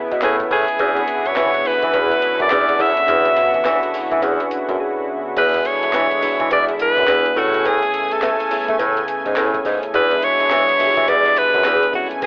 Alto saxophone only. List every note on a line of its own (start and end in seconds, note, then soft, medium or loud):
0.24 0.36 G#4 medium
0.52 1.29 G#4 medium
1.27 1.68 C#5 medium
1.67 2.41 B4 loud
2.42 2.83 D5 loud
2.81 3.95 E5 loud
5.38 5.68 B4 loud
5.67 6.52 C#5 loud
6.53 6.65 D5 loud
6.82 7.40 B4 loud
7.39 7.69 F#4 loud
7.67 8.14 G#4 loud
8.13 8.69 A4 medium
9.95 10.25 B4 loud
10.24 11.11 C#5 loud
11.10 11.40 D5 loud
11.38 11.95 B4 loud
11.96 12.08 F#4 medium